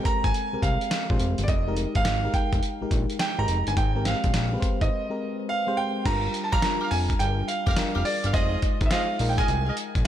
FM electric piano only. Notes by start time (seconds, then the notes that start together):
Already playing: G#3 C4 G4 A4 A#4
0.04 A#4
0.53 G#3 C4 G4 A#4
1.10 G#3 C4 G4 C5
1.67 G#3 D#4 G4 A#4
2.24 G#3 D#4 G4 A#4
2.81 G#3 D#4 G4 A#4
3.38 G#3 D#4 G4 A#4
3.95 G#3 C4 G4 A#4
4.52 G#3 C4 G4 B4
4.60 C5
5.10 G#3 C4 G4 A#4
5.67 G#3 C4 G4 C5
6.05 G3 D4 F4 A4
6.13 A#4
6.63 G3 D4 F4 A#4
7.20 G3 D4 F4 G#4
7.27 A#4
7.77 G3 D4 F4 A#4
8.34 G3 D#4 F4 C5
8.40 G#3
8.91 G#3 D#4 F4 C5
9.20 G#3 D#4 F4 A#4